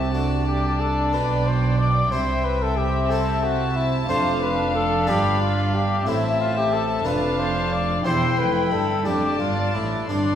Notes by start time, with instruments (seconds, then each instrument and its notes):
Already playing: double bass section C2, harpsichord C3 C4 E4, cello section C3, viola section C4, trumpet G4, violin section E5 A5
0.13 harpsichord A3 D4, viola section D4, trumpet F#4, violin section D5
0.47 trumpet G4
0.80 trumpet A4
1.13 double bass section B1, harpsichord B2 D4, cello section B2, trumpet B4, violin section G5
1.47 trumpet C5
1.79 trumpet D5
2.11 double bass section C2, cello section C3, harpsichord C3 C4 E4, viola section C4, trumpet C5, violin section E5
2.44 trumpet B4
2.62 trumpet A4
2.77 trumpet G4
3.10 harpsichord A3 C4 E4, trumpet A4, violin section A5
3.43 trumpet F#4
3.76 trumpet E4
4.09 double bass section F1, cello section F2, harpsichord F2 A3 D4 F4, viola section D4, trumpet C5, violin section F5
4.42 trumpet B4
4.75 trumpet A4
5.07 double bass section G1, harpsichord G2 B3 D4 F4, cello section G2, trumpet G4, violin section B5
5.41 trumpet F4
5.75 trumpet G4
6.06 double bass section A1, cello section A2, harpsichord A2 A3 C4 E4, viola section C4, trumpet E4, violin section E5 A5
6.41 trumpet F4
6.57 trumpet G4
6.73 trumpet A4
7.05 double bass section F1, cello section F2, harpsichord F2 A3 D4 F4, viola section D4, trumpet B4, violin section F5
7.39 trumpet C5
7.73 trumpet D5
8.04 double bass section E1, harpsichord E2 E4 G4, cello section E2, viola section E4, trumpet C5, violin section G5 C6
8.37 double bass section F1, harpsichord F2, cello section F2, trumpet B4
8.54 violin section B5
8.72 double bass section G1, harpsichord G2, cello section G2, trumpet A4
9.05 double bass section F1, harpsichord F2 A3 D4, cello section F2, viola section D4, trumpet G4, violin section D5 A5
9.39 double bass section G1, cello section G2, harpsichord G2, trumpet F4
9.74 double bass section A1, cello section A2, harpsichord A2, trumpet E4
10.09 double bass section G1, cello section G2, harpsichord G2 C4 D4, trumpet D4, viola section D4, violin section D5 C6